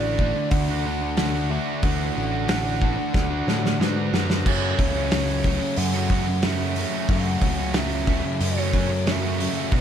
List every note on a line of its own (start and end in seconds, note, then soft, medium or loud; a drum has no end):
0.00 0.32 A1 medium
0.00 0.19 D3 medium
0.00 1.53 E3 medium
0.00 0.20 A3 loud
0.00 1.18 A3 medium
0.00 0.21 D4 loud
0.00 0.21 F#4 loud
0.00 0.52 D5 loud
0.19 0.68 D3 medium
0.19 0.37 A3 medium
0.19 0.36 D4 medium
0.19 0.36 F#4 medium
0.19 kick medium
0.35 0.71 A3 medium
0.35 0.67 D4 medium
0.35 muted overdriven electric guitar stroke medium
0.50 1.57 D2 loud
0.50 0.84 D3 loud
0.50 0.85 A3 loud
0.50 0.85 D4 loud
0.50 1.48 F#4 medium
0.50 0.86 F#4 loud
0.50 1.52 F#5 loud
0.50 kick loud
0.50 open hi-hat medium
0.70 0.85 A3 medium
0.70 0.85 D4 medium
0.70 0.87 F#4 medium
0.84 1.17 D3 medium
0.84 1.02 A3 medium
0.84 1.02 D4 medium
0.84 1.02 F#4 medium
1.00 1.18 A3 medium
1.00 1.17 D4 medium
1.00 muted overdriven electric guitar stroke medium
1.17 1.49 D3 medium
1.17 1.36 A3 medium
1.17 1.34 D4 loud
1.17 1.34 F#4 loud
1.17 snare loud
1.17 open hi-hat medium
1.34 1.51 A3 medium
1.34 1.50 D4 medium
1.34 1.52 F#4 medium
1.50 1.81 D3 medium
1.50 1.82 A3 medium
1.50 1.82 D4 medium
1.50 1.83 F#4 medium
1.50 1.85 E5 medium
1.82 2.10 D2 loud
1.82 2.47 D3 loud
1.82 2.48 E3 medium
1.82 2.32 A3 loud
1.82 2.32 D4 loud
1.82 2.31 F#4 loud
1.82 3.80 F#5 loud
1.82 kick loud
1.82 open hi-hat medium
2.14 2.96 A1 medium
2.14 2.46 D3 medium
2.14 2.47 D3 medium
2.14 2.48 A3 medium
2.14 3.80 A3 medium
2.14 2.33 A3 medium
2.14 2.47 D4 medium
2.14 2.30 D4 medium
2.14 2.48 F#4 loud
2.32 2.48 A3 medium
2.32 2.48 D4 medium
2.32 2.49 F#4 medium
2.48 2.79 D3 loud
2.48 4.13 E3 medium
2.48 2.80 A3 loud
2.48 2.81 D4 loud
2.48 2.82 F#4 loud
2.48 snare loud
2.48 open hi-hat medium
2.81 3.30 D3 medium
2.81 2.96 A3 medium
2.81 2.96 D4 medium
2.81 2.96 F#4 medium
2.81 kick medium
2.97 3.32 A3 medium
2.97 3.29 D4 medium
2.97 muted overdriven electric guitar stroke medium
3.13 3.41 D2 loud
3.13 3.46 D3 loud
3.13 3.47 A3 medium
3.13 3.47 D4 loud
3.13 4.12 F#4 medium
3.13 3.47 F#4 loud
3.13 kick loud
3.13 snare medium
3.30 3.47 A3 medium
3.30 3.47 D4 medium
3.30 3.48 F#4 medium
3.47 3.77 A2 medium
3.47 3.79 D3 medium
3.47 3.63 A3 medium
3.47 3.62 D4 medium
3.47 3.62 F#4 medium
3.47 snare medium
3.63 3.80 A3 medium
3.63 3.82 D4 medium
3.63 muted overdriven electric guitar stroke medium
3.63 snare medium
3.80 4.10 G#2 medium
3.80 4.12 D3 medium
3.80 3.97 A3 medium
3.80 3.96 D4 loud
3.80 3.95 F#4 loud
3.80 4.50 B4 medium
3.80 snare medium
3.97 4.13 A3 medium
3.97 4.14 D4 medium
3.97 4.14 F#4 medium
4.13 4.43 F#2 medium
4.13 4.44 D3 medium
4.13 4.45 A3 medium
4.13 4.45 D4 medium
4.13 4.45 F#4 medium
4.13 snare medium
4.30 snare loud
4.46 4.73 F#2 medium
4.46 5.12 F#2 loud
4.46 5.11 C#3 loud
4.46 4.98 F#3 loud
4.46 4.97 A3 loud
4.46 4.96 C#4 loud
4.46 4.96 F#4 loud
4.46 5.79 C#5 loud
4.46 kick loud
4.46 crash loud
4.78 5.58 C#2 medium
4.78 5.12 F#2 medium
4.78 5.11 F#2 medium
4.78 5.11 C#3 medium
4.78 4.98 C#3 medium
4.78 5.12 F#3 medium
4.78 4.96 F#3 medium
4.78 5.12 A3 medium
4.78 5.13 C#4 medium
4.78 kick medium
4.78 open hi-hat medium
4.96 5.12 C#3 medium
4.96 5.13 F#3 medium
4.96 5.14 A3 medium
4.96 5.14 C#4 medium
4.96 5.14 F#4 medium
5.11 6.43 F#2 loud
5.11 5.78 C#3 loud
5.11 5.44 F#3 medium
5.11 5.46 A3 loud
5.11 5.46 C#4 loud
5.11 5.47 F#4 loud
5.11 snare loud
5.11 open hi-hat medium
5.44 5.94 F#2 medium
5.44 5.76 F#2 medium
5.44 5.77 C#3 medium
5.44 5.64 C#3 medium
5.44 5.63 F#3 medium
5.44 5.62 A3 medium
5.44 5.61 C#4 medium
5.44 5.62 F#4 medium
5.44 kick medium
5.44 open hi-hat medium
5.61 5.96 C#3 medium
5.61 5.94 F#3 medium
5.61 muted overdriven electric guitar stroke medium
5.76 6.09 F#2 medium
5.76 6.83 F#2 loud
5.76 6.09 C#3 loud
5.76 6.10 F#3 loud
5.76 6.11 A3 medium
5.76 6.10 C#4 loud
5.76 6.47 F#5 loud
5.76 open hi-hat medium
5.94 6.10 C#3 medium
5.94 6.11 F#3 medium
5.94 6.12 A3 medium
5.94 6.11 C#4 medium
5.94 6.13 F#4 medium
6.10 6.41 F#2 medium
6.10 6.42 F#2 medium
6.10 6.43 C#3 medium
6.10 6.28 C#3 medium
6.10 6.29 F#3 medium
6.10 6.29 A3 medium
6.10 6.28 C#4 medium
6.10 6.28 F#4 medium
6.10 kick medium
6.10 open hi-hat medium
6.27 6.43 C#3 medium
6.27 6.45 F#3 medium
6.27 muted overdriven electric guitar stroke medium
6.42 6.93 F#2 medium
6.42 6.93 C#3 medium
6.42 6.64 F#3 loud
6.42 6.63 A3 loud
6.42 6.61 C#4 loud
6.42 6.61 F#4 loud
6.42 7.10 E5 loud
6.42 snare loud
6.42 open hi-hat medium
6.61 6.76 C#3 medium
6.61 6.77 F#3 medium
6.61 6.78 A3 medium
6.61 6.77 C#4 medium
6.61 6.79 F#4 medium
6.75 7.07 F#2 medium
6.75 7.08 C#3 medium
6.75 7.09 C#3 medium
6.75 7.10 F#3 medium
6.75 7.11 A3 medium
6.75 7.10 C#4 medium
6.75 open hi-hat medium
6.80 7.11 F#4 medium
7.09 7.35 F#2 loud
7.09 7.73 F#2 medium
7.09 7.73 C#3 loud
7.09 7.61 F#3 loud
7.09 7.60 A3 loud
7.09 7.58 C#4 loud
7.09 7.58 F#4 loud
7.09 7.79 F#5 loud
7.09 kick loud
7.09 open hi-hat medium
7.41 8.21 C#2 medium
7.41 7.73 F#2 medium
7.41 7.74 F#2 medium
7.41 7.74 C#3 medium
7.41 7.59 C#3 medium
7.41 7.75 F#3 medium
7.41 7.57 F#3 medium
7.41 7.76 A3 medium
7.41 7.75 C#4 loud
7.41 kick medium
7.41 open hi-hat medium
7.58 7.75 C#3 medium
7.58 7.75 F#3 medium
7.58 7.75 A3 medium
7.58 7.75 C#4 medium
7.58 7.76 F#4 medium
7.74 8.40 F#2 medium
7.74 8.41 C#3 medium
7.74 8.07 F#3 loud
7.74 8.09 A3 loud
7.74 8.08 C#4 loud
7.74 8.09 F#4 loud
7.74 snare loud
7.74 open hi-hat medium
7.78 8.47 E5 loud
8.07 8.57 F#2 medium
8.07 8.39 F#2 medium
8.07 8.40 C#3 medium
8.07 8.26 C#3 medium
8.07 8.25 F#3 medium
8.07 8.25 A3 medium
8.07 8.24 C#4 medium
8.07 8.24 F#4 medium
8.07 kick medium
8.07 open hi-hat medium
8.24 8.59 C#3 medium
8.24 8.56 F#3 medium
8.24 muted overdriven electric guitar stroke medium
8.40 9.46 F#2 loud
8.40 8.71 F#2 loud
8.40 8.72 C#3 loud
8.40 8.73 F#3 loud
8.40 8.73 A3 loud
8.40 8.73 C#4 loud
8.40 open hi-hat medium
8.46 9.13 C#5 loud
8.58 8.72 C#3 medium
8.58 8.74 F#3 medium
8.58 8.74 A3 medium
8.58 8.75 C#4 medium
8.58 8.76 F#4 medium
8.72 9.04 F#2 medium
8.72 9.05 C#3 medium
8.72 8.90 C#3 medium
8.72 8.92 F#3 medium
8.72 8.92 A3 medium
8.72 8.90 C#4 medium
8.72 8.91 F#4 medium
8.72 kick medium
8.72 open hi-hat medium
8.89 9.07 C#3 medium
8.89 9.08 F#3 medium
8.89 muted overdriven electric guitar stroke medium
9.07 9.56 F#2 loud
9.07 9.56 C#3 loud
9.07 9.24 F#3 loud
9.07 9.24 A3 loud
9.07 9.22 C#4 loud
9.07 9.22 F#4 loud
9.07 snare loud
9.07 open hi-hat medium
9.11 9.75 E5 loud
9.22 9.39 C#3 medium
9.22 9.39 F#3 medium
9.22 9.39 A3 medium
9.22 9.40 C#4 medium
9.22 9.41 F#4 medium
9.38 9.69 F#2 medium
9.38 9.70 F#2 medium
9.38 9.70 C#3 medium
9.38 9.71 C#3 medium
9.38 9.71 F#3 medium
9.38 9.72 A3 medium
9.38 9.71 C#4 medium
9.38 9.73 F#4 medium
9.38 open hi-hat medium
9.71 9.81 B1 loud
9.71 9.81 B2 loud
9.71 9.81 F#3 loud
9.71 9.81 B3 loud
9.71 9.81 D4 loud
9.71 9.81 F#4 loud
9.71 kick loud
9.71 open hi-hat medium
9.77 9.81 B3 loud